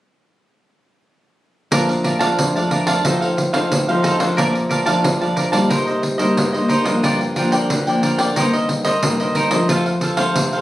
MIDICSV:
0, 0, Header, 1, 5, 480
1, 0, Start_track
1, 0, Key_signature, -2, "major"
1, 0, Tempo, 664452
1, 1241, Time_signature, 4, 2, 24, 8
1, 7666, End_track
2, 0, Start_track
2, 0, Title_t, "Cavaquinho"
2, 0, Program_c, 0, 24
2, 1241, Note_on_c, 0, 70, 70
2, 1247, Note_on_c, 0, 74, 70
2, 1249, Note_on_c, 0, 77, 71
2, 1257, Note_on_c, 0, 81, 68
2, 1351, Note_off_c, 0, 70, 0
2, 1354, Note_off_c, 0, 74, 0
2, 1356, Note_off_c, 0, 77, 0
2, 1360, Note_off_c, 0, 81, 0
2, 1476, Note_on_c, 0, 70, 44
2, 1480, Note_on_c, 0, 74, 41
2, 1486, Note_on_c, 0, 77, 49
2, 1489, Note_on_c, 0, 81, 50
2, 1576, Note_off_c, 0, 81, 0
2, 1585, Note_on_c, 0, 81, 66
2, 1586, Note_off_c, 0, 77, 0
2, 1589, Note_off_c, 0, 70, 0
2, 1591, Note_off_c, 0, 74, 0
2, 1595, Note_on_c, 0, 77, 55
2, 1602, Note_on_c, 0, 74, 46
2, 1824, Note_off_c, 0, 81, 0
2, 1829, Note_off_c, 0, 77, 0
2, 1833, Note_off_c, 0, 74, 0
2, 1847, Note_on_c, 0, 81, 41
2, 1854, Note_on_c, 0, 77, 42
2, 1862, Note_on_c, 0, 74, 35
2, 1953, Note_off_c, 0, 74, 0
2, 1955, Note_off_c, 0, 81, 0
2, 1956, Note_on_c, 0, 70, 41
2, 1958, Note_off_c, 0, 77, 0
2, 1962, Note_on_c, 0, 74, 42
2, 1968, Note_on_c, 0, 77, 44
2, 1972, Note_on_c, 0, 81, 52
2, 2062, Note_off_c, 0, 81, 0
2, 2070, Note_off_c, 0, 70, 0
2, 2070, Note_on_c, 0, 81, 58
2, 2073, Note_off_c, 0, 74, 0
2, 2074, Note_off_c, 0, 77, 0
2, 2082, Note_on_c, 0, 77, 49
2, 2088, Note_on_c, 0, 74, 43
2, 2187, Note_off_c, 0, 81, 0
2, 2193, Note_off_c, 0, 77, 0
2, 2196, Note_off_c, 0, 74, 0
2, 2200, Note_on_c, 0, 63, 63
2, 2208, Note_on_c, 0, 69, 61
2, 2215, Note_on_c, 0, 72, 61
2, 2216, Note_on_c, 0, 77, 65
2, 2312, Note_off_c, 0, 63, 0
2, 2313, Note_off_c, 0, 77, 0
2, 2316, Note_off_c, 0, 69, 0
2, 2319, Note_off_c, 0, 72, 0
2, 2322, Note_on_c, 0, 77, 44
2, 2329, Note_on_c, 0, 72, 44
2, 2339, Note_on_c, 0, 69, 36
2, 2430, Note_off_c, 0, 69, 0
2, 2431, Note_off_c, 0, 72, 0
2, 2433, Note_off_c, 0, 77, 0
2, 2551, Note_on_c, 0, 77, 57
2, 2561, Note_on_c, 0, 72, 56
2, 2566, Note_on_c, 0, 69, 51
2, 2787, Note_off_c, 0, 77, 0
2, 2792, Note_off_c, 0, 72, 0
2, 2795, Note_off_c, 0, 69, 0
2, 2806, Note_on_c, 0, 77, 49
2, 2816, Note_on_c, 0, 72, 43
2, 2821, Note_on_c, 0, 69, 40
2, 2909, Note_off_c, 0, 69, 0
2, 2910, Note_on_c, 0, 63, 65
2, 2913, Note_off_c, 0, 72, 0
2, 2915, Note_off_c, 0, 77, 0
2, 2917, Note_on_c, 0, 69, 70
2, 2921, Note_on_c, 0, 72, 70
2, 2928, Note_on_c, 0, 77, 77
2, 3022, Note_off_c, 0, 77, 0
2, 3027, Note_off_c, 0, 63, 0
2, 3030, Note_off_c, 0, 72, 0
2, 3031, Note_off_c, 0, 69, 0
2, 3031, Note_on_c, 0, 77, 42
2, 3038, Note_on_c, 0, 72, 41
2, 3047, Note_on_c, 0, 69, 36
2, 3147, Note_off_c, 0, 77, 0
2, 3151, Note_off_c, 0, 72, 0
2, 3156, Note_off_c, 0, 69, 0
2, 3156, Note_on_c, 0, 70, 67
2, 3163, Note_on_c, 0, 74, 67
2, 3168, Note_on_c, 0, 77, 71
2, 3172, Note_on_c, 0, 81, 75
2, 3270, Note_off_c, 0, 70, 0
2, 3274, Note_off_c, 0, 74, 0
2, 3276, Note_off_c, 0, 77, 0
2, 3278, Note_off_c, 0, 81, 0
2, 3390, Note_on_c, 0, 70, 42
2, 3397, Note_on_c, 0, 74, 47
2, 3403, Note_on_c, 0, 77, 52
2, 3406, Note_on_c, 0, 81, 48
2, 3500, Note_off_c, 0, 81, 0
2, 3507, Note_off_c, 0, 70, 0
2, 3509, Note_on_c, 0, 81, 66
2, 3510, Note_off_c, 0, 74, 0
2, 3510, Note_off_c, 0, 77, 0
2, 3519, Note_on_c, 0, 77, 61
2, 3526, Note_on_c, 0, 74, 50
2, 3747, Note_off_c, 0, 81, 0
2, 3752, Note_off_c, 0, 77, 0
2, 3755, Note_off_c, 0, 74, 0
2, 3764, Note_on_c, 0, 81, 40
2, 3772, Note_on_c, 0, 77, 40
2, 3779, Note_on_c, 0, 74, 38
2, 3872, Note_off_c, 0, 74, 0
2, 3872, Note_on_c, 0, 70, 46
2, 3874, Note_off_c, 0, 81, 0
2, 3875, Note_off_c, 0, 77, 0
2, 3880, Note_on_c, 0, 74, 49
2, 3884, Note_on_c, 0, 77, 44
2, 3889, Note_on_c, 0, 81, 50
2, 3979, Note_off_c, 0, 81, 0
2, 3986, Note_off_c, 0, 77, 0
2, 3988, Note_off_c, 0, 70, 0
2, 3988, Note_on_c, 0, 81, 61
2, 3992, Note_off_c, 0, 74, 0
2, 3994, Note_on_c, 0, 77, 52
2, 4002, Note_on_c, 0, 74, 52
2, 4106, Note_off_c, 0, 81, 0
2, 4109, Note_off_c, 0, 77, 0
2, 4113, Note_off_c, 0, 74, 0
2, 4113, Note_on_c, 0, 63, 60
2, 4117, Note_on_c, 0, 70, 65
2, 4125, Note_on_c, 0, 72, 64
2, 4129, Note_on_c, 0, 75, 68
2, 4229, Note_off_c, 0, 63, 0
2, 4231, Note_off_c, 0, 70, 0
2, 4233, Note_off_c, 0, 75, 0
2, 4235, Note_off_c, 0, 72, 0
2, 4241, Note_on_c, 0, 75, 44
2, 4251, Note_on_c, 0, 72, 45
2, 4255, Note_on_c, 0, 70, 39
2, 4347, Note_off_c, 0, 70, 0
2, 4350, Note_off_c, 0, 72, 0
2, 4353, Note_off_c, 0, 75, 0
2, 4464, Note_on_c, 0, 75, 62
2, 4474, Note_on_c, 0, 72, 55
2, 4481, Note_on_c, 0, 70, 53
2, 4704, Note_off_c, 0, 75, 0
2, 4709, Note_off_c, 0, 72, 0
2, 4713, Note_off_c, 0, 70, 0
2, 4716, Note_on_c, 0, 75, 45
2, 4727, Note_on_c, 0, 72, 42
2, 4732, Note_on_c, 0, 70, 38
2, 4825, Note_off_c, 0, 70, 0
2, 4828, Note_on_c, 0, 63, 61
2, 4830, Note_off_c, 0, 75, 0
2, 4832, Note_off_c, 0, 72, 0
2, 4834, Note_on_c, 0, 70, 72
2, 4841, Note_on_c, 0, 72, 70
2, 4847, Note_on_c, 0, 75, 75
2, 4937, Note_off_c, 0, 75, 0
2, 4945, Note_on_c, 0, 75, 46
2, 4946, Note_off_c, 0, 63, 0
2, 4948, Note_off_c, 0, 72, 0
2, 4949, Note_off_c, 0, 70, 0
2, 4956, Note_on_c, 0, 72, 43
2, 4962, Note_on_c, 0, 70, 40
2, 5065, Note_off_c, 0, 75, 0
2, 5070, Note_off_c, 0, 72, 0
2, 5073, Note_off_c, 0, 70, 0
2, 5080, Note_on_c, 0, 65, 71
2, 5085, Note_on_c, 0, 70, 68
2, 5092, Note_on_c, 0, 74, 76
2, 5096, Note_on_c, 0, 79, 76
2, 5192, Note_off_c, 0, 65, 0
2, 5194, Note_off_c, 0, 70, 0
2, 5198, Note_off_c, 0, 74, 0
2, 5200, Note_off_c, 0, 79, 0
2, 5317, Note_on_c, 0, 65, 50
2, 5323, Note_on_c, 0, 70, 52
2, 5330, Note_on_c, 0, 74, 51
2, 5332, Note_on_c, 0, 79, 53
2, 5427, Note_off_c, 0, 79, 0
2, 5430, Note_off_c, 0, 65, 0
2, 5433, Note_off_c, 0, 70, 0
2, 5435, Note_on_c, 0, 79, 64
2, 5437, Note_off_c, 0, 74, 0
2, 5444, Note_on_c, 0, 74, 54
2, 5449, Note_on_c, 0, 70, 50
2, 5669, Note_off_c, 0, 79, 0
2, 5674, Note_off_c, 0, 74, 0
2, 5676, Note_off_c, 0, 70, 0
2, 5687, Note_on_c, 0, 79, 42
2, 5699, Note_on_c, 0, 74, 41
2, 5704, Note_on_c, 0, 70, 35
2, 5796, Note_off_c, 0, 79, 0
2, 5797, Note_off_c, 0, 70, 0
2, 5797, Note_on_c, 0, 65, 38
2, 5800, Note_off_c, 0, 74, 0
2, 5805, Note_on_c, 0, 70, 46
2, 5808, Note_on_c, 0, 74, 50
2, 5814, Note_on_c, 0, 79, 49
2, 5905, Note_off_c, 0, 79, 0
2, 5910, Note_off_c, 0, 65, 0
2, 5914, Note_off_c, 0, 70, 0
2, 5914, Note_off_c, 0, 74, 0
2, 5914, Note_on_c, 0, 79, 62
2, 5923, Note_on_c, 0, 74, 53
2, 5929, Note_on_c, 0, 70, 50
2, 6029, Note_off_c, 0, 79, 0
2, 6033, Note_off_c, 0, 74, 0
2, 6036, Note_off_c, 0, 70, 0
2, 6043, Note_on_c, 0, 63, 60
2, 6049, Note_on_c, 0, 70, 69
2, 6056, Note_on_c, 0, 72, 66
2, 6060, Note_on_c, 0, 75, 74
2, 6153, Note_off_c, 0, 63, 0
2, 6155, Note_off_c, 0, 75, 0
2, 6156, Note_off_c, 0, 70, 0
2, 6160, Note_off_c, 0, 72, 0
2, 6164, Note_on_c, 0, 75, 48
2, 6173, Note_on_c, 0, 72, 40
2, 6178, Note_on_c, 0, 70, 37
2, 6271, Note_off_c, 0, 70, 0
2, 6274, Note_off_c, 0, 72, 0
2, 6274, Note_off_c, 0, 75, 0
2, 6391, Note_on_c, 0, 75, 59
2, 6400, Note_on_c, 0, 72, 53
2, 6405, Note_on_c, 0, 70, 50
2, 6627, Note_off_c, 0, 75, 0
2, 6631, Note_off_c, 0, 72, 0
2, 6634, Note_off_c, 0, 70, 0
2, 6648, Note_on_c, 0, 75, 45
2, 6654, Note_on_c, 0, 72, 40
2, 6664, Note_on_c, 0, 70, 37
2, 6754, Note_off_c, 0, 70, 0
2, 6755, Note_off_c, 0, 75, 0
2, 6757, Note_on_c, 0, 63, 67
2, 6759, Note_off_c, 0, 72, 0
2, 6762, Note_on_c, 0, 70, 64
2, 6768, Note_on_c, 0, 72, 68
2, 6772, Note_on_c, 0, 75, 65
2, 6862, Note_off_c, 0, 75, 0
2, 6870, Note_off_c, 0, 63, 0
2, 6870, Note_off_c, 0, 72, 0
2, 6871, Note_on_c, 0, 75, 43
2, 6873, Note_off_c, 0, 70, 0
2, 6878, Note_on_c, 0, 72, 37
2, 6886, Note_on_c, 0, 70, 38
2, 6987, Note_off_c, 0, 75, 0
2, 6991, Note_off_c, 0, 72, 0
2, 6994, Note_off_c, 0, 70, 0
2, 7006, Note_on_c, 0, 65, 68
2, 7010, Note_on_c, 0, 69, 73
2, 7015, Note_on_c, 0, 72, 70
2, 7022, Note_on_c, 0, 77, 70
2, 7114, Note_off_c, 0, 65, 0
2, 7116, Note_off_c, 0, 69, 0
2, 7119, Note_off_c, 0, 72, 0
2, 7122, Note_off_c, 0, 77, 0
2, 7238, Note_on_c, 0, 65, 46
2, 7245, Note_on_c, 0, 69, 49
2, 7247, Note_on_c, 0, 72, 44
2, 7253, Note_on_c, 0, 77, 49
2, 7341, Note_off_c, 0, 77, 0
2, 7349, Note_on_c, 0, 77, 63
2, 7350, Note_off_c, 0, 65, 0
2, 7350, Note_off_c, 0, 72, 0
2, 7354, Note_off_c, 0, 69, 0
2, 7359, Note_on_c, 0, 72, 61
2, 7367, Note_on_c, 0, 69, 51
2, 7586, Note_off_c, 0, 77, 0
2, 7591, Note_off_c, 0, 72, 0
2, 7595, Note_off_c, 0, 69, 0
2, 7607, Note_on_c, 0, 77, 45
2, 7616, Note_on_c, 0, 72, 44
2, 7625, Note_on_c, 0, 69, 34
2, 7666, Note_off_c, 0, 69, 0
2, 7666, Note_off_c, 0, 72, 0
2, 7666, Note_off_c, 0, 77, 0
2, 7666, End_track
3, 0, Start_track
3, 0, Title_t, "Nylon-string guitar"
3, 0, Program_c, 1, 24
3, 1235, Note_on_c, 1, 46, 60
3, 1239, Note_on_c, 1, 53, 51
3, 1239, Note_on_c, 1, 57, 45
3, 1243, Note_on_c, 1, 62, 51
3, 1562, Note_off_c, 1, 53, 0
3, 1562, Note_off_c, 1, 57, 0
3, 1564, Note_off_c, 1, 62, 0
3, 1584, Note_on_c, 1, 53, 52
3, 1590, Note_on_c, 1, 57, 58
3, 1592, Note_on_c, 1, 62, 63
3, 1695, Note_off_c, 1, 46, 0
3, 1714, Note_on_c, 1, 41, 63
3, 1795, Note_off_c, 1, 53, 0
3, 1796, Note_off_c, 1, 57, 0
3, 1799, Note_off_c, 1, 62, 0
3, 1839, Note_on_c, 1, 53, 58
3, 1845, Note_on_c, 1, 57, 54
3, 1847, Note_on_c, 1, 62, 61
3, 2163, Note_off_c, 1, 53, 0
3, 2164, Note_off_c, 1, 57, 0
3, 2166, Note_off_c, 1, 62, 0
3, 2175, Note_off_c, 1, 41, 0
3, 2198, Note_on_c, 1, 45, 65
3, 2200, Note_on_c, 1, 53, 49
3, 2205, Note_on_c, 1, 60, 49
3, 2205, Note_on_c, 1, 63, 52
3, 2522, Note_off_c, 1, 53, 0
3, 2523, Note_off_c, 1, 60, 0
3, 2526, Note_off_c, 1, 63, 0
3, 2549, Note_on_c, 1, 53, 53
3, 2552, Note_on_c, 1, 60, 55
3, 2554, Note_on_c, 1, 63, 62
3, 2657, Note_off_c, 1, 45, 0
3, 2685, Note_on_c, 1, 45, 64
3, 2758, Note_off_c, 1, 53, 0
3, 2759, Note_off_c, 1, 60, 0
3, 2759, Note_off_c, 1, 63, 0
3, 2801, Note_on_c, 1, 53, 62
3, 2804, Note_on_c, 1, 60, 57
3, 2808, Note_on_c, 1, 63, 66
3, 3004, Note_off_c, 1, 53, 0
3, 3005, Note_off_c, 1, 60, 0
3, 3007, Note_off_c, 1, 63, 0
3, 3028, Note_on_c, 1, 53, 57
3, 3033, Note_on_c, 1, 57, 56
3, 3036, Note_on_c, 1, 62, 64
3, 3140, Note_off_c, 1, 45, 0
3, 3160, Note_on_c, 1, 46, 60
3, 3478, Note_off_c, 1, 53, 0
3, 3479, Note_off_c, 1, 57, 0
3, 3481, Note_off_c, 1, 62, 0
3, 3506, Note_on_c, 1, 53, 56
3, 3510, Note_on_c, 1, 57, 55
3, 3513, Note_on_c, 1, 62, 63
3, 3618, Note_off_c, 1, 46, 0
3, 3638, Note_on_c, 1, 41, 61
3, 3716, Note_off_c, 1, 53, 0
3, 3719, Note_off_c, 1, 57, 0
3, 3719, Note_off_c, 1, 62, 0
3, 3761, Note_on_c, 1, 53, 59
3, 3764, Note_on_c, 1, 57, 55
3, 3769, Note_on_c, 1, 62, 61
3, 3964, Note_off_c, 1, 53, 0
3, 3966, Note_off_c, 1, 57, 0
3, 3967, Note_off_c, 1, 62, 0
3, 3992, Note_on_c, 1, 55, 57
3, 3994, Note_on_c, 1, 58, 59
3, 3996, Note_on_c, 1, 63, 65
3, 4097, Note_off_c, 1, 41, 0
3, 4125, Note_on_c, 1, 48, 63
3, 4439, Note_off_c, 1, 55, 0
3, 4440, Note_off_c, 1, 58, 0
3, 4441, Note_off_c, 1, 63, 0
3, 4471, Note_on_c, 1, 55, 55
3, 4475, Note_on_c, 1, 58, 52
3, 4479, Note_on_c, 1, 63, 58
3, 4580, Note_off_c, 1, 48, 0
3, 4604, Note_on_c, 1, 43, 68
3, 4679, Note_off_c, 1, 55, 0
3, 4681, Note_off_c, 1, 58, 0
3, 4682, Note_off_c, 1, 63, 0
3, 4727, Note_on_c, 1, 55, 60
3, 4733, Note_on_c, 1, 58, 55
3, 4735, Note_on_c, 1, 63, 62
3, 4927, Note_off_c, 1, 55, 0
3, 4930, Note_off_c, 1, 58, 0
3, 4931, Note_off_c, 1, 63, 0
3, 4957, Note_on_c, 1, 53, 54
3, 4961, Note_on_c, 1, 58, 60
3, 4961, Note_on_c, 1, 62, 62
3, 5059, Note_off_c, 1, 43, 0
3, 5086, Note_on_c, 1, 43, 62
3, 5314, Note_off_c, 1, 53, 0
3, 5314, Note_off_c, 1, 58, 0
3, 5317, Note_off_c, 1, 62, 0
3, 5322, Note_on_c, 1, 53, 54
3, 5324, Note_on_c, 1, 58, 49
3, 5326, Note_on_c, 1, 62, 63
3, 5540, Note_off_c, 1, 43, 0
3, 5548, Note_off_c, 1, 53, 0
3, 5548, Note_off_c, 1, 58, 0
3, 5549, Note_off_c, 1, 62, 0
3, 5563, Note_on_c, 1, 50, 61
3, 5684, Note_on_c, 1, 53, 62
3, 5689, Note_on_c, 1, 58, 61
3, 5694, Note_on_c, 1, 62, 65
3, 6005, Note_off_c, 1, 53, 0
3, 6007, Note_off_c, 1, 58, 0
3, 6009, Note_off_c, 1, 62, 0
3, 6019, Note_off_c, 1, 50, 0
3, 6034, Note_on_c, 1, 43, 64
3, 6036, Note_on_c, 1, 51, 50
3, 6039, Note_on_c, 1, 58, 57
3, 6044, Note_on_c, 1, 60, 58
3, 6347, Note_off_c, 1, 51, 0
3, 6350, Note_off_c, 1, 58, 0
3, 6351, Note_off_c, 1, 60, 0
3, 6494, Note_off_c, 1, 43, 0
3, 6520, Note_on_c, 1, 43, 67
3, 6520, Note_on_c, 1, 51, 54
3, 6523, Note_on_c, 1, 58, 54
3, 6527, Note_on_c, 1, 60, 57
3, 6842, Note_off_c, 1, 51, 0
3, 6845, Note_off_c, 1, 58, 0
3, 6845, Note_off_c, 1, 60, 0
3, 6870, Note_on_c, 1, 53, 52
3, 6875, Note_on_c, 1, 57, 53
3, 6878, Note_on_c, 1, 60, 58
3, 6977, Note_off_c, 1, 43, 0
3, 7000, Note_on_c, 1, 41, 65
3, 7198, Note_off_c, 1, 53, 0
3, 7200, Note_off_c, 1, 57, 0
3, 7201, Note_off_c, 1, 60, 0
3, 7347, Note_on_c, 1, 53, 54
3, 7352, Note_on_c, 1, 57, 55
3, 7355, Note_on_c, 1, 60, 63
3, 7457, Note_off_c, 1, 41, 0
3, 7479, Note_on_c, 1, 48, 62
3, 7666, Note_off_c, 1, 48, 0
3, 7666, Note_off_c, 1, 53, 0
3, 7666, Note_off_c, 1, 57, 0
3, 7666, Note_off_c, 1, 60, 0
3, 7666, End_track
4, 0, Start_track
4, 0, Title_t, "Muted cavaquinho strokes"
4, 1368, Note_on_c, 9, 29, 33
4, 1441, Note_off_c, 9, 29, 0
4, 2435, Note_on_c, 9, 29, 34
4, 2507, Note_off_c, 9, 29, 0
4, 3285, Note_on_c, 9, 29, 34
4, 3357, Note_off_c, 9, 29, 0
4, 4353, Note_on_c, 9, 29, 37
4, 4425, Note_off_c, 9, 29, 0
4, 5207, Note_on_c, 9, 29, 37
4, 5279, Note_off_c, 9, 29, 0
4, 6276, Note_on_c, 9, 29, 36
4, 6349, Note_off_c, 9, 29, 0
4, 7129, Note_on_c, 9, 29, 33
4, 7201, Note_off_c, 9, 29, 0
4, 7666, End_track
5, 0, Start_track
5, 0, Title_t, "Pandeiro"
5, 1240, Note_on_c, 9, 54, 69
5, 1313, Note_off_c, 9, 54, 0
5, 1365, Note_on_c, 9, 54, 30
5, 1437, Note_off_c, 9, 54, 0
5, 1476, Note_on_c, 9, 54, 51
5, 1548, Note_off_c, 9, 54, 0
5, 1593, Note_on_c, 9, 54, 61
5, 1666, Note_off_c, 9, 54, 0
5, 1723, Note_on_c, 9, 54, 74
5, 1796, Note_off_c, 9, 54, 0
5, 1851, Note_on_c, 9, 54, 28
5, 1923, Note_off_c, 9, 54, 0
5, 1958, Note_on_c, 9, 54, 50
5, 2030, Note_off_c, 9, 54, 0
5, 2072, Note_on_c, 9, 54, 63
5, 2144, Note_off_c, 9, 54, 0
5, 2201, Note_on_c, 9, 54, 73
5, 2273, Note_off_c, 9, 54, 0
5, 2328, Note_on_c, 9, 54, 33
5, 2400, Note_off_c, 9, 54, 0
5, 2442, Note_on_c, 9, 54, 51
5, 2515, Note_off_c, 9, 54, 0
5, 2555, Note_on_c, 9, 54, 60
5, 2627, Note_off_c, 9, 54, 0
5, 2684, Note_on_c, 9, 54, 75
5, 2757, Note_off_c, 9, 54, 0
5, 2810, Note_on_c, 9, 54, 31
5, 2882, Note_off_c, 9, 54, 0
5, 2917, Note_on_c, 9, 54, 55
5, 2990, Note_off_c, 9, 54, 0
5, 3035, Note_on_c, 9, 54, 63
5, 3107, Note_off_c, 9, 54, 0
5, 3165, Note_on_c, 9, 54, 70
5, 3238, Note_off_c, 9, 54, 0
5, 3289, Note_on_c, 9, 54, 30
5, 3361, Note_off_c, 9, 54, 0
5, 3400, Note_on_c, 9, 54, 54
5, 3472, Note_off_c, 9, 54, 0
5, 3513, Note_on_c, 9, 54, 60
5, 3586, Note_off_c, 9, 54, 0
5, 3643, Note_on_c, 9, 54, 75
5, 3715, Note_off_c, 9, 54, 0
5, 3767, Note_on_c, 9, 54, 31
5, 3840, Note_off_c, 9, 54, 0
5, 3877, Note_on_c, 9, 54, 54
5, 3949, Note_off_c, 9, 54, 0
5, 3994, Note_on_c, 9, 54, 65
5, 4066, Note_off_c, 9, 54, 0
5, 4122, Note_on_c, 9, 54, 78
5, 4194, Note_off_c, 9, 54, 0
5, 4245, Note_on_c, 9, 54, 32
5, 4317, Note_off_c, 9, 54, 0
5, 4357, Note_on_c, 9, 54, 52
5, 4429, Note_off_c, 9, 54, 0
5, 4474, Note_on_c, 9, 54, 59
5, 4546, Note_off_c, 9, 54, 0
5, 4604, Note_on_c, 9, 54, 75
5, 4676, Note_off_c, 9, 54, 0
5, 4727, Note_on_c, 9, 54, 29
5, 4799, Note_off_c, 9, 54, 0
5, 4837, Note_on_c, 9, 54, 49
5, 4909, Note_off_c, 9, 54, 0
5, 4952, Note_on_c, 9, 54, 64
5, 5024, Note_off_c, 9, 54, 0
5, 5083, Note_on_c, 9, 54, 68
5, 5156, Note_off_c, 9, 54, 0
5, 5208, Note_on_c, 9, 54, 30
5, 5280, Note_off_c, 9, 54, 0
5, 5318, Note_on_c, 9, 54, 53
5, 5390, Note_off_c, 9, 54, 0
5, 5433, Note_on_c, 9, 54, 58
5, 5505, Note_off_c, 9, 54, 0
5, 5563, Note_on_c, 9, 54, 73
5, 5635, Note_off_c, 9, 54, 0
5, 5684, Note_on_c, 9, 54, 31
5, 5757, Note_off_c, 9, 54, 0
5, 5800, Note_on_c, 9, 54, 53
5, 5873, Note_off_c, 9, 54, 0
5, 5913, Note_on_c, 9, 54, 63
5, 5985, Note_off_c, 9, 54, 0
5, 6041, Note_on_c, 9, 54, 75
5, 6113, Note_off_c, 9, 54, 0
5, 6166, Note_on_c, 9, 54, 31
5, 6238, Note_off_c, 9, 54, 0
5, 6277, Note_on_c, 9, 54, 50
5, 6349, Note_off_c, 9, 54, 0
5, 6390, Note_on_c, 9, 54, 59
5, 6463, Note_off_c, 9, 54, 0
5, 6520, Note_on_c, 9, 54, 78
5, 6592, Note_off_c, 9, 54, 0
5, 6645, Note_on_c, 9, 54, 31
5, 6717, Note_off_c, 9, 54, 0
5, 6754, Note_on_c, 9, 54, 50
5, 6826, Note_off_c, 9, 54, 0
5, 6869, Note_on_c, 9, 54, 67
5, 6941, Note_off_c, 9, 54, 0
5, 7000, Note_on_c, 9, 54, 72
5, 7072, Note_off_c, 9, 54, 0
5, 7123, Note_on_c, 9, 54, 30
5, 7195, Note_off_c, 9, 54, 0
5, 7232, Note_on_c, 9, 54, 52
5, 7304, Note_off_c, 9, 54, 0
5, 7347, Note_on_c, 9, 54, 61
5, 7420, Note_off_c, 9, 54, 0
5, 7480, Note_on_c, 9, 54, 76
5, 7553, Note_off_c, 9, 54, 0
5, 7602, Note_on_c, 9, 54, 29
5, 7666, Note_off_c, 9, 54, 0
5, 7666, End_track
0, 0, End_of_file